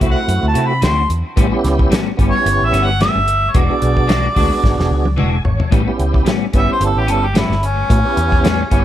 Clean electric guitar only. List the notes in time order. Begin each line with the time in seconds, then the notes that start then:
0.00 C4 E4 F#4
0.54 C4 E4 F#4
0.82 D3 C4 E4 F#4
1.36 A2 G3 B3 C#4
1.90 A2 G3 B3 C#4
2.17 G3 B3 C#4
2.72 G3 B3 C#4
3.00 A2 G3 B3 C#4
3.54 E3 G#3 D4 F#4
4.08 E3 G#3 D4 F#4
4.35 G#3 D4 F#4
5.17 E3 G#3 D4 F#4
5.71 A2 G3 B3 C#4
6.25 A2 G3 B3 C#4
6.53 G3 B3 C#4
7.07 G3 B3 C#4
7.33 A2 G3 B3 C#4
8.44 A2 G3 B3 C#4
8.70 G3 B3 C#4